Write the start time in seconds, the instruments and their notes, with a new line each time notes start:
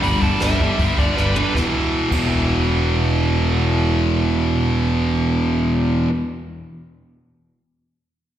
0.02 picked electric bass G1, distorted electric guitar G2 D3 G3, lead electric guitar B5, open hi-hat
0.22 picked electric bass G1, distorted electric guitar G2 D3 G3, lead electric guitar A5, kick, open hi-hat
0.40 picked electric bass G1, distorted electric guitar G2 D3 G3, lead electric guitar E5, snare, open hi-hat
0.60 picked electric bass G1, distorted electric guitar G2 D3 G3, kick, open hi-hat
0.79 picked electric bass G1, distorted electric guitar G2 D3 G3, kick, open hi-hat
0.98 picked electric bass G1, distorted electric guitar G2 D3 G3, lead electric guitar D5, kick, open hi-hat
1.16 picked electric bass G1, distorted electric guitar G2 D3 G3, lead electric guitar B4, snare
1.35 distorted electric guitar G2 D3 G3, lead electric guitar B4, floor tom
1.53 picked electric bass E1, distorted electric guitar E2 B2 E3, kick, snare
2.10 picked electric bass E1, distorted electric guitar E2 B2, kick, crash
2.14 distorted electric guitar E3